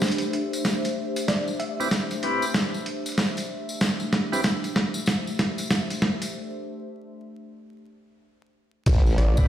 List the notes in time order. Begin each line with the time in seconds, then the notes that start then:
Already playing: A3 D4 G4 C5 E5
0.01 snare, closed hi-hat, tambourine
0.05 closed hi-hat
0.08 closed hi-hat
0.11 closed hi-hat
0.18 closed hi-hat, tambourine
0.33 closed hi-hat
0.53 closed hi-hat, tambourine
0.65 snare, closed hi-hat, tambourine
0.85 closed hi-hat, tambourine
1.16 closed hi-hat, tambourine
1.28 D5, snare, closed hi-hat, tambourine
1.48 tambourine
1.60 E5, closed hi-hat
1.80 C4 E4 G4 B4, tambourine
1.91 snare, closed hi-hat, tambourine
2.11 closed hi-hat, tambourine
2.23 C4 E4 G4 B4, closed hi-hat
2.42 tambourine
2.54 snare, closed hi-hat, tambourine
2.74 tambourine
2.86 closed hi-hat
3.06 closed hi-hat, tambourine
3.09 closed hi-hat
3.12 closed hi-hat
3.15 snare, closed hi-hat, tambourine
3.18 closed hi-hat
3.28 closed hi-hat
3.33 closed hi-hat
3.37 closed hi-hat, tambourine
3.69 tambourine
3.81 snare, closed hi-hat, tambourine
4.00 tambourine
4.13 snare, closed hi-hat
4.32 C4 E4 G4 B4, tambourine
4.44 snare, closed hi-hat, tambourine
4.64 closed hi-hat, tambourine
4.76 snare, closed hi-hat
4.94 tambourine
5.06 snare, closed hi-hat, tambourine
5.27 tambourine
5.39 snare, closed hi-hat
5.58 closed hi-hat, tambourine
5.70 snare, closed hi-hat, tambourine
5.90 closed hi-hat, tambourine
6.02 snare
6.22 closed hi-hat, tambourine
8.86 A1, kick, closed hi-hat, crash, tambourine, sub drop
9.06 tambourine
9.18 A1 D5, snare, closed hi-hat
9.37 C4 E4 G4 B4, kick, tambourine